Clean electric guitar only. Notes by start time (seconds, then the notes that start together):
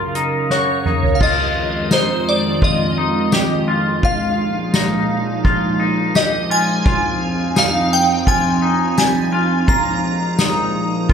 Already playing: F4
0.15 D#4
0.51 F#4
0.86 D#4
1.21 F4
1.92 D#4
2.62 F4
2.98 D#4
3.33 G4
3.68 F4
4.03 F4
4.74 D#4
5.45 F4
5.80 D#4
6.15 G4
6.50 F4
6.85 F4
7.56 D#4
8.27 F4
8.62 D#4
8.98 G3
9.32 F4
9.68 F4
10.39 D#4
11.10 F4